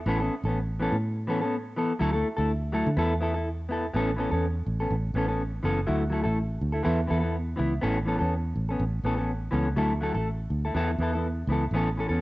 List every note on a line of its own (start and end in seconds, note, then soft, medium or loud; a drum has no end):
0.06 0.28 A1 medium
0.06 0.20 E3 medium
0.06 0.20 B3 medium
0.06 0.20 C#4 medium
0.06 0.19 A4 medium
0.20 0.34 B3 soft
0.20 0.34 C#4 medium
0.20 0.33 A4 medium
0.44 0.88 A1 medium
0.44 0.59 C#4 medium
0.44 0.58 A4 medium
0.48 0.60 B3 soft
0.80 0.95 E3 medium
0.80 0.95 B3 medium
0.80 0.96 C#4 medium
0.80 0.96 A4 medium
0.92 1.85 A2 medium
1.27 1.40 E3 medium
1.27 1.41 B3 medium
1.27 1.42 C#4 medium
1.27 1.40 A4 medium
1.41 1.56 B3 soft
1.41 1.55 C#4 medium
1.41 1.55 A4 medium
1.76 1.91 E3 medium
1.76 1.92 B3 medium
1.76 1.92 A4 medium
1.99 2.22 D2 medium
1.99 2.13 F#3 medium
1.99 2.13 A3 medium
1.99 2.12 E4 medium
1.99 2.12 A4 medium
2.13 2.28 A3 soft
2.13 2.27 E4 soft
2.13 2.27 A4 medium
2.37 2.82 D2 medium
2.37 2.52 A3 soft
2.37 2.52 E4 medium
2.37 2.51 A4 medium
2.72 2.88 F#3 medium
2.72 2.88 A3 medium
2.72 2.89 E4 medium
2.72 2.89 A4 medium
2.86 2.96 D3 medium
2.97 3.90 E2 loud
2.97 3.12 B3 medium
2.97 3.13 E4 medium
2.97 3.13 A4 medium
3.20 3.34 B3 medium
3.20 3.34 E4 medium
3.20 3.33 A4 medium
3.34 3.49 E4 soft
3.34 3.48 A4 medium
3.69 3.84 B3 medium
3.69 3.85 E4 medium
3.69 3.86 A4 medium
3.93 4.28 A1 medium
3.93 4.09 E3 medium
3.93 4.10 B3 medium
3.93 4.10 C#4 medium
3.93 4.10 A4 medium
4.16 4.30 E3 medium
4.16 4.31 B3 medium
4.16 4.31 C#4 medium
4.16 4.30 A4 medium
4.31 4.64 E2 medium
4.31 4.46 B3 soft
4.31 4.46 C#4 medium
4.31 4.45 A4 medium
4.66 4.89 A1 medium
4.80 4.94 B3 soft
4.80 4.94 C#4 soft
4.80 4.94 A4 medium
4.90 5.13 A1 medium
5.14 5.59 A1 medium
5.14 5.28 E3 medium
5.14 5.29 B3 medium
5.14 5.28 C#4 medium
5.14 5.27 A4 medium
5.28 5.43 B3 soft
5.28 5.42 C#4 medium
5.28 5.42 A4 medium
5.63 5.86 F#1 medium
5.63 5.79 E3 medium
5.63 5.79 B3 medium
5.63 5.80 C#4 medium
5.63 5.80 A4 medium
5.87 6.22 D2 medium
5.87 6.03 F#3 medium
5.87 6.03 A3 medium
5.87 6.03 E4 medium
5.87 muted clean electric guitar stroke medium
6.10 6.24 F#3 medium
6.10 6.25 A3 medium
6.10 6.24 E4 medium
6.10 6.22 A4 medium
6.24 6.58 A1 medium
6.24 6.39 A3 soft
6.24 6.39 E4 medium
6.24 6.38 A4 medium
6.61 6.83 D2 medium
6.72 6.84 A3 soft
6.72 6.84 E4 soft
6.72 6.84 A4 soft
6.83 7.08 E2 medium
6.83 6.99 E3 medium
6.83 7.00 B3 medium
6.83 7.00 E4 medium
6.83 7.00 A4 medium
7.07 7.54 E2 medium
7.07 7.21 E3 medium
7.07 7.22 B3 medium
7.07 7.21 E4 medium
7.07 7.19 A4 medium
7.20 7.37 B3 soft
7.20 7.36 E4 medium
7.20 7.35 A4 medium
7.56 7.81 C#2 medium
7.56 7.72 E3 medium
7.56 7.73 B3 medium
7.56 7.74 E4 medium
7.56 muted clean electric guitar stroke medium
7.81 8.17 A1 medium
7.81 7.97 E3 medium
7.81 7.97 B3 medium
7.81 7.98 C#4 medium
7.81 7.98 A4 medium
8.05 8.19 E3 medium
8.05 8.20 B3 medium
8.05 8.20 C#4 medium
8.05 8.18 A4 medium
8.19 8.53 E2 medium
8.19 8.34 B3 soft
8.19 8.34 C#4 medium
8.19 8.33 A4 medium
8.56 8.77 A1 medium
8.69 8.83 B3 soft
8.69 8.83 C#4 medium
8.69 8.82 A4 soft
8.79 9.02 A1 medium
9.03 9.48 A1 medium
9.03 9.17 E3 medium
9.03 9.17 B3 medium
9.03 9.17 C#4 medium
9.03 9.16 A4 medium
9.17 9.32 B3 soft
9.17 9.31 C#4 soft
9.17 9.30 A4 medium
9.51 9.75 C#2 medium
9.51 9.67 E3 medium
9.51 9.67 B3 medium
9.51 9.68 C#4 medium
9.51 9.68 A4 medium
9.76 10.11 D2 medium
9.76 9.92 F#3 medium
9.76 9.92 A3 medium
9.76 9.92 E4 medium
9.76 9.93 A4 medium
10.01 10.14 F#3 medium
10.01 10.14 A3 medium
10.01 10.15 E4 medium
10.01 10.13 A4 medium
10.14 10.47 A1 medium
10.14 10.29 A3 soft
10.14 10.28 A4 medium
10.50 10.72 D2 medium
10.65 10.75 A3 soft
10.65 10.75 E4 soft
10.65 10.75 A4 medium
10.74 10.96 E2 medium
10.74 10.89 E3 medium
10.74 10.90 B3 medium
10.74 10.90 E4 medium
10.74 10.91 A4 medium
10.98 11.43 E2 medium
10.98 11.12 E3 medium
10.98 11.13 B3 medium
10.98 11.13 E4 medium
11.03 11.12 A4 medium
11.13 11.27 B3 soft
11.13 11.27 E4 medium
11.13 11.26 A4 soft
11.47 11.69 C#2 medium
11.47 11.63 E3 medium
11.47 11.64 B3 medium
11.51 11.64 E4 medium
11.51 11.65 A4 medium
11.71 12.05 A1 medium
11.71 11.88 E3 medium
11.71 11.88 B3 medium
11.71 11.88 C#4 medium
11.76 11.89 A4 medium
11.97 12.09 E3 medium
11.97 12.10 C#4 medium
11.97 12.08 A4 medium
12.09 12.21 E2 medium
12.09 12.21 B3 soft
12.09 12.21 C#4 medium
12.09 12.21 A4 medium